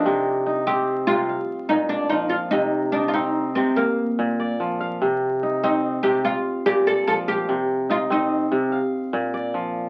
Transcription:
Already playing: D4 D#4 F4 G4 A4 C5
0.06 C3
0.46 D#4
0.67 C4 G4
1.07 C3 F4
1.29 F5
1.69 A#2 D#4
1.89 D4 D5
2.10 F3 D#4
2.30 F4 F5
2.51 C3 D#4
2.92 D4 D#4
3.08 F4
3.14 C4 D#4
3.55 C3 C4
3.76 A#3 F5
4.19 A#2
4.40 D5
4.60 F3
4.80 F5
5.02 C3
5.43 D#4
5.63 C4 D#4
6.03 C3 G4
6.25 F4 F5
6.66 A#2 G4
6.87 A4 D5
7.07 F3 A4
7.28 G4 F5
7.49 C3
7.90 D#4 F4
8.10 C4 D#4
8.52 C3
8.72 F5
9.13 A#2
9.34 D5
9.54 F3

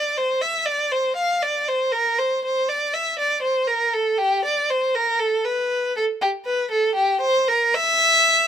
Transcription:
Already playing: D5
0.17 C5
0.41 E5
0.66 D5
0.92 C5
1.16 F5
1.43 D5
1.68 C5
1.92 A#4
2.19 C5
2.44 C5
2.69 D5
2.94 E5
3.19 D5
3.42 C5
3.67 A#4
3.93 A4
4.18 G4
4.45 D5
4.70 C5
4.95 A#4
5.19 A4
5.44 B4
5.96 A4
6.22 G4
6.45 B4
6.71 A4
6.95 G4
7.21 C5
7.48 A#4
7.75 E5

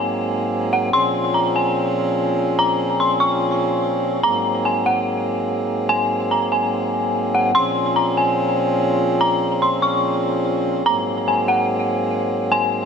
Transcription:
Already playing: G#2 F#3 A#3 C4 G#4 G#5
0.73 F#5
0.93 A#2 F3 C#4 G#4 C6
1.34 A#5
1.56 G#5
2.59 A#5
3.00 C6
3.20 C#6
4.23 G#2 F#3 A#3 C4 A#5
4.65 G#5
4.86 F#5
5.89 G#5
6.31 A#5
6.52 G#5
7.35 F#5
7.55 A#2 F3 C4 C#4 G#4 C6
7.96 A#5
8.17 G#5
9.21 A#5
9.62 C6
9.82 C#6
10.86 G#2 F#3 A#3 C4 A#5
11.28 G#5
11.48 F#5
12.52 G#5

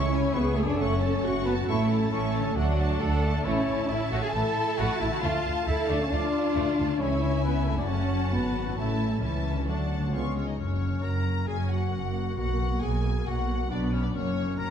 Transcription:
Already playing: C#2 C#3 G#3 C#4 E4 C#5 E5 C#6
0.12 C#4 C#5 G#5
0.34 C#2 B3 E4 G#4 B4 E5 C#6
0.56 A3 C#4 A4 C#5 G#5
0.61 F#2
0.65 A3 D4 D5
0.70 C#4
0.75 C#4 A4 C#6
0.79 F#1 C#3 A3 A4 C#5 F#5
1.00 C#4 C#5 A5
1.23 F#1 A3 F#4 F#5 C#6
1.45 B3 C#4 B4 C#5 A5
1.50 A2
1.55 A3
1.59 C#4
1.64 C#3 A3 E4 A4 E5
1.68 A1 A3 E4 C#6
1.89 C#4 C#5 A5
2.11 A1 A3 C#4 E4 A4 E5 C#6
2.34 C#4 C#5 A5
2.39 D3
2.43 A3
2.48 D4
2.52 D3 F#3 A3 A4
2.56 D2 F#3 D4 F#4 D5 F#5
2.79 A3 F#5 A5
3.00 D2 A3 D4 A4 D5 F#5
3.24 A2 A3 F#5 A5
3.32 A3
3.37 E4
3.41 A4
3.45 A1 E3 A3 C#4 E4 C#5 E5 A5
3.67 A1 A3
3.89 A1 A3 C#4 E4 E5
4.12 A1 A3 F#4 F#5
4.22 G#4 G#5
4.33 A1 E3 A3 E4 A4 A5
4.78 A1 A3 F#4 F#5
5.00 A1 A3 E4 E5
5.05 D3
5.10 A3 F#4 F#5
5.14 F4
5.19 A3 F4 A4 F5
5.23 D2 F3 A3 F4 F5
5.44 D2 A3
5.66 D2 A3 E4 A4 E5
5.88 D2 A3 D4 D5
6.00 C#4 C#5
6.10 D2 F3 A3 D4 F4 D5
6.54 D2 A3
6.78 D2 C#3 A3
6.87 C#4
6.91 E4
6.95 E3 G#4
7.00 C#2 G#3 C#4 E4 C#5 E5 G#5
7.44 B3 B4
7.67 A3 A4
7.71 F#2
7.76 C#4 D4 D5
7.80 F#4
7.84 C#4 A4 C#5
7.89 F#1 C#3 A3 C#4 F#5 A5
8.33 G#1 B3 F#4 B4
8.60 A2
8.64 C#4
8.69 E4
8.73 A3 A4
8.77 A1 C#3 A3 C#4 E4 E5 A5
9.22 C#2 E3 C#4 E4 E5 A5
9.50 D3
9.54 D4
9.59 F#4
9.63 A4 F#5
9.67 D2 D3 F#3 A3 D4 F#4 A5
9.92 C#3 C#4
10.00 B3
10.05 F4
10.09 F3 B3 C#5
10.13 C#2 G#3 B3 F4 G#4 F5 C#6
10.36 C#4 C#5
10.48 D#4 D#5
10.59 F#1 F#2 C#4 C#5
10.81 C#3
11.03 F#1 F#2 F#4 A#4 A#5
11.26 A#3
11.47 F#1 F#2 C#4 G#4 G#5
11.70 C#3 F#4 F#5
11.92 F#1 F#2 A#3 F#4
12.15 A#3
12.37 B1 B2 F#4 F#5
12.59 F#3
12.81 B1 B2 F#4 G#4 G#5
13.04 B3
13.26 B1 B2 F#4 F#5
13.49 F#3
13.70 B1 B2 B3 D4 F#4 D5
13.93 B3 C#4 C#5
14.04 D4 D5
14.14 F#1 F#2 A#3 C#4 C#5
14.39 C#3
14.59 F#1 F#2 C#4 F#4 A#4 A#5

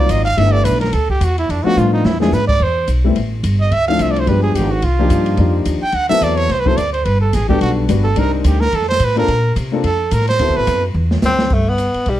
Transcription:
Already playing: F#3 A#3 C4 D#4 F4 D5
0.09 G#1 D#5, hi-hat pedal, ride
0.25 F5, ride
0.37 G1 G3 A3 B3 D4 E4 E5, kick, ride
0.52 D5
0.64 B1 B4, kick, hi-hat pedal, ride
0.75 snare
0.81 A#4, snare, ride
0.93 D2 A4, kick, ride
1.10 G4, kick
1.21 E2 F#4, kick, hi-hat pedal, ride
1.38 E4, ride
1.49 F2 D4, kick, ride
1.64 F3 A3 B3 D4 F4 F#4, muted upright bass stroke
1.77 A2 F4, hi-hat pedal, high tom
1.93 D#4
2.04 E2 E4, snare
2.20 F3 G#3 B3 D4 E4 G#4, snare
2.32 G#2 B4, snare, hi-hat pedal
2.48 D5, kick, crash
2.60 E2 C5
2.88 B1, kick, hi-hat pedal, ride
3.04 G3 A3 B3 C4 E4
3.16 A1, kick, ride
3.43 G1, kick, hi-hat pedal, ride
3.61 D#5
3.71 D2 E5, kick, ride
3.88 F3 A3 C4 D4 E4 F5
3.99 C2 E5, kick, hi-hat pedal, ride
4.11 D5
4.16 C5, ride
4.27 G1 F3 G#3 B3 D4 G4 B4, kick, ride
4.43 G#4
4.55 G#1 G4, kick, hi-hat pedal, ride
4.71 F#4
4.82 C2 F4, kick, ride
4.99 F3 A#3 D4 D#4 G4
5.10 G2, kick, hi-hat pedal, ride
5.26 ride
5.37 F2 F3 A#3 D4 D#4 G4, kick, ride
5.65 D#2, kick, hi-hat pedal, ride
5.82 G5
5.92 D2 F#5, kick, ride
6.09 F#3 B3 C4 E4 A4 E5, muted upright bass stroke
6.21 E2 D5, kick, hi-hat pedal, ride
6.36 C#5, ride
6.49 C2 C5, kick, snare, ride
6.60 B4
6.65 F#3 B3 C4 E4 A4 C5, kick
6.77 D2 D5, hi-hat pedal, ride
6.93 C5, ride
7.05 G1 B4, kick, ride
7.21 A4
7.33 A1 G#4, kick, snare, hi-hat pedal, ride
7.49 G3 B3 D4 F#4 G4 A4, kick
7.61 B1 F#4, kick, ride
7.89 G1 G3 B3 D4 F#4 B4, kick, hi-hat pedal, ride
8.04 A4
8.16 C2 G3 C4 D4 D#4 A#4, kick, ride
8.34 D4
8.44 D2 G4, kick, hi-hat pedal, ride
8.60 A#4, snare
8.72 F2 A4, kick, ride
8.82 snare
8.89 C5, snare
8.99 A2, kick, hi-hat pedal, ride
9.04 B4
9.16 A#3 C4 D4 F4 A4 A#4, ride
9.28 A#2, kick, ride
9.56 C3, kick, hi-hat pedal, ride
9.72 A#3 C4 D4 F4 A4
9.84 F2 A4, kick, ride
10.11 A2 A#4, kick, hi-hat pedal, ride
10.21 snare
10.27 C5, snare, ride
10.39 D2 B3 C4 E4 F#4 A4, kick, ride
10.48 C2
10.56 A1 B4
10.67 F#2, kick, hi-hat pedal, ride
10.94 E2
11.11 snare
11.22 D2 C4, snare, hi-hat pedal
11.39 snare
11.50 G1 A3, kick, crash
11.69 B3
11.78 hi-hat pedal, ride
11.94 muted upright bass stroke, ride
12.06 B1 G3, kick, ride

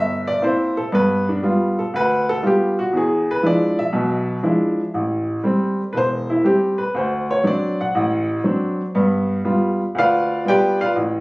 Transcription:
Already playing: G1 E5
0.28 D5
0.42 A#3 C4 E4 C5
0.77 A4
0.92 G2 B3 B4
1.29 D4
1.43 G3 B3 F4
1.79 A4
1.94 D2 B4
2.29 A4
2.43 G3 B3 F4 G4
2.79 F#4
2.93 E2
2.97 G#4
3.31 B4
3.43 F3 G#3 D4 E4 D5
3.79 E5
3.93 B1 B2
4.43 F3 G#3 D4 E4
4.94 A1
5.44 G3 A3 C4
5.93 E1 B4
5.97 C5
6.30 E4
6.44 G3 A3 C4 G4
6.78 B4
6.95 D2 C5
7.31 C#5
7.43 F#3 C4 D4 D5
7.81 F#5
7.95 A1
8.44 F#3 C4 D4
8.95 G2 B3
9.45 G3 B3 F4
9.95 D2 F4 B4 D5 F5
10.45 G3 B3 F4 G5
10.49 G4 B4 D5
10.81 F4 B4 D5 F5
10.96 A1

